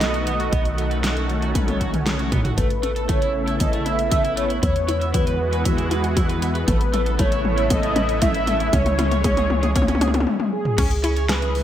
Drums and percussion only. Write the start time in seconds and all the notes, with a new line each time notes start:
0.01 snare, closed hi-hat
0.14 closed hi-hat
0.27 closed hi-hat
0.40 closed hi-hat
0.53 kick, closed hi-hat
0.65 closed hi-hat
0.78 closed hi-hat
0.91 closed hi-hat
1.04 snare, closed hi-hat
1.17 closed hi-hat
1.30 closed hi-hat
1.42 closed hi-hat
1.55 kick, closed hi-hat, high tom
1.68 closed hi-hat, high tom
1.81 kick, closed hi-hat
1.94 closed hi-hat, mid tom
2.06 snare, closed hi-hat, mid tom
2.19 closed hi-hat
2.32 kick, closed hi-hat, mid tom
2.45 closed hi-hat, mid tom
2.58 kick, closed hi-hat, mid tom
2.70 closed hi-hat
2.83 closed hi-hat
2.96 closed hi-hat
3.09 kick, closed hi-hat, mid tom
3.22 closed hi-hat
3.48 closed hi-hat
3.60 kick, closed hi-hat, mid tom
3.73 closed hi-hat
3.86 closed hi-hat
3.99 closed hi-hat
4.12 kick, closed hi-hat, mid tom
4.25 closed hi-hat
4.37 closed hi-hat
4.50 closed hi-hat
4.63 kick, closed hi-hat, mid tom
4.76 closed hi-hat
4.89 closed hi-hat
5.01 closed hi-hat
5.14 kick, closed hi-hat, mid tom
5.27 closed hi-hat
5.53 closed hi-hat
5.65 kick, closed hi-hat, mid tom
5.78 closed hi-hat
5.91 closed hi-hat
6.04 closed hi-hat
6.17 kick, closed hi-hat, mid tom
6.29 closed hi-hat
6.42 closed hi-hat
6.55 closed hi-hat
6.68 kick, closed hi-hat, mid tom
6.81 closed hi-hat
6.94 closed hi-hat, mid tom
7.06 closed hi-hat
7.19 kick, closed hi-hat, mid tom
7.32 closed hi-hat
7.45 mid tom
7.58 closed hi-hat
7.70 kick, closed hi-hat, mid tom
7.83 closed hi-hat
7.96 closed hi-hat, mid tom
8.09 closed hi-hat
8.22 kick, closed hi-hat, mid tom
8.34 closed hi-hat
8.47 closed hi-hat, mid tom
8.60 closed hi-hat
8.73 kick, closed hi-hat, mid tom
8.86 closed hi-hat, mid tom
8.99 closed hi-hat, mid tom
9.11 closed hi-hat, mid tom
9.24 kick, closed hi-hat, mid tom
9.37 closed hi-hat, mid tom
9.50 mid tom
9.63 closed hi-hat, mid tom
9.76 kick, closed hi-hat, mid tom
9.82 mid tom
9.88 closed hi-hat, mid tom
9.95 mid tom
10.01 closed hi-hat, mid tom
10.08 mid tom
10.14 closed hi-hat, mid tom
10.20 mid tom
10.27 high tom
10.40 high tom
10.65 mid tom
10.78 kick, closed hi-hat, crash
10.91 closed hi-hat
11.04 closed hi-hat
11.17 closed hi-hat
11.29 snare, closed hi-hat
11.42 closed hi-hat
11.55 open hi-hat